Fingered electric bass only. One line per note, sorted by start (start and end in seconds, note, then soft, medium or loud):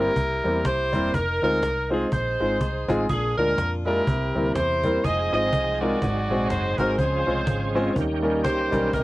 0.16 0.40 C2 medium
0.45 0.62 E2 medium
0.65 0.94 C2 medium
0.93 1.11 E1 loud
1.14 1.38 F1 loud
1.42 1.60 D2 medium
1.62 2.04 C2 loud
2.12 2.36 A#1 loud
2.40 2.58 G#1 medium
2.61 2.85 C2 medium
2.88 3.06 A1 loud
3.09 3.33 A#1 medium
3.37 3.55 D2 medium
3.58 4.00 F2 medium
4.07 4.31 C2 medium
4.35 4.53 D2 medium
4.56 4.97 E2 medium
5.05 5.28 F1 loud
5.33 5.50 G#1 medium
5.53 5.94 C2 medium
6.02 6.26 G#1 loud
6.29 6.47 A#1 medium
6.50 6.74 F#1 loud
6.78 6.96 G#1 loud
6.99 7.23 C#2 medium
7.28 7.45 C2 loud
7.47 7.89 G#1 loud
7.96 8.44 D#2 loud
8.44 8.68 C#2 medium
8.73 8.90 B1 medium
8.93 9.04 C2 loud